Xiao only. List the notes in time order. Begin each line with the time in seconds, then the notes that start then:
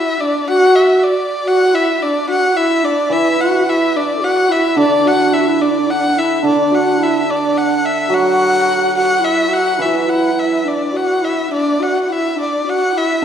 Already playing: E4
0.19 D4
0.49 F#4
1.45 F#4
1.74 E4
2.02 D4
2.28 F#4
2.55 E4
2.83 D4
3.11 E4
3.40 F#4
3.67 E4
3.96 D4
4.16 A4
4.21 F#4
4.49 E4
4.77 D4
5.05 F#4
5.34 E4
5.41 F#4
5.47 E4
5.62 D4
5.70 E4
5.80 D4
5.86 E4
5.93 D4
6.17 E4
6.44 D4
6.72 F#4
6.99 E4
7.25 D4
8.08 F#4
8.94 F#4
9.14 F#4
9.20 E4
9.48 F#4
9.76 E4
9.85 F#4
9.94 E4
10.02 F#4
10.09 E4
10.34 E4
10.65 D4
10.92 F#4
11.22 E4
11.50 D4
11.80 F#4
12.09 E4
12.36 D4
12.66 F#4
12.95 E4